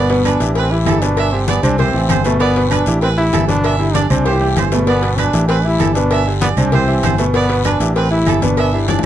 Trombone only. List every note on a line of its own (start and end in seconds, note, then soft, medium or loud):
0.00 0.23 B3 loud
0.26 0.58 D4 loud
0.56 0.72 C4 medium
0.71 1.03 E4 loud
1.02 1.33 D4 medium
1.32 1.49 C4 medium
1.48 1.62 B3 loud
1.63 1.78 D4 loud
1.79 2.26 C4 medium
2.25 2.39 A3 medium
2.40 2.72 B3 loud
2.71 3.01 D4 medium
3.02 3.09 C4 loud
3.18 3.46 E4 loud
3.48 3.77 D4 loud
3.79 3.96 E4 loud
3.94 4.09 D4 loud
4.10 4.27 D4 medium
4.26 4.58 G4 loud
4.72 4.86 A3 medium
4.87 5.20 B3 loud
5.18 5.48 D4 loud
5.49 5.66 C4 loud
5.64 5.94 E4 loud
5.94 6.24 D4 loud
6.41 6.48 B3 loud
6.56 6.74 D4 medium
6.72 7.18 C4 loud
7.19 7.26 A3 medium
7.34 7.63 B3 loud
7.65 7.94 D4 medium
7.96 8.10 C4 medium
8.11 8.44 E4 loud
8.43 8.75 D4 medium
8.73 8.88 E4 medium
8.89 9.03 D4 loud